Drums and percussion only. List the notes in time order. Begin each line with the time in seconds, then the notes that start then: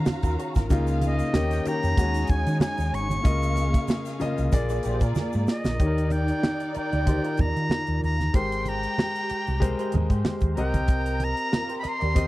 0.06 snare, high conga, shaker
0.23 kick, closed hi-hat, shaker
0.39 closed hi-hat
0.55 kick, snare, closed hi-hat, high conga, shaker
0.70 kick, closed hi-hat, shaker
0.87 closed hi-hat, shaker
1.01 closed hi-hat, muted conga, shaker
1.19 closed hi-hat, shaker
1.34 snare, high conga, shaker
1.51 snare, closed hi-hat, shaker
1.65 closed hi-hat, shaker
1.83 closed hi-hat, shaker
1.97 kick, closed hi-hat, muted conga, shaker
2.14 closed hi-hat, shaker
2.27 kick, closed hi-hat, muted conga
2.46 closed hi-hat, shaker
2.60 snare, high conga, shaker
2.78 closed hi-hat, shaker
2.94 closed hi-hat
3.10 closed hi-hat, high conga, shaker
3.25 kick, closed hi-hat, shaker
3.42 closed hi-hat, shaker
3.56 closed hi-hat, muted conga, shaker
3.74 kick, closed hi-hat, shaker
3.88 snare, high conga, shaker
4.05 snare, closed hi-hat, shaker
4.20 closed hi-hat, shaker
4.38 closed hi-hat, shaker
4.52 kick, closed hi-hat, muted conga, shaker
4.69 closed hi-hat, shaker
4.83 closed hi-hat, muted conga, shaker
5.01 kick, closed hi-hat, shaker
5.15 snare, high conga, shaker
5.33 shaker
5.47 snare, shaker
5.64 snare, high conga, shaker
5.80 kick, closed hi-hat
5.98 closed hi-hat
6.10 closed hi-hat, muted conga
6.28 closed hi-hat
6.43 snare, high conga
6.60 closed hi-hat
6.75 closed hi-hat
6.92 closed hi-hat
7.07 kick, closed hi-hat, muted conga
7.24 closed hi-hat
7.37 kick, closed hi-hat, muted conga, low conga
7.57 closed hi-hat
7.70 snare, high conga
7.87 closed hi-hat
8.02 open hi-hat, high conga
8.20 snare, closed hi-hat, high conga
8.34 kick, closed hi-hat
8.52 closed hi-hat
8.65 closed hi-hat, muted conga
8.83 closed hi-hat
8.98 snare, high conga
9.16 closed hi-hat
9.30 closed hi-hat
9.47 closed hi-hat
9.62 kick, closed hi-hat, muted conga
9.79 closed hi-hat
9.92 closed hi-hat, muted conga, low conga
10.10 kick, closed hi-hat
10.25 snare, high conga
10.40 kick, closed hi-hat
10.57 closed hi-hat, high conga
10.74 kick, closed hi-hat, high conga
10.88 kick, closed hi-hat
11.06 closed hi-hat
11.20 closed hi-hat, muted conga
11.37 closed hi-hat
11.53 snare, high conga
11.69 closed hi-hat
11.84 closed hi-hat
12.01 closed hi-hat
12.16 kick, closed hi-hat, muted conga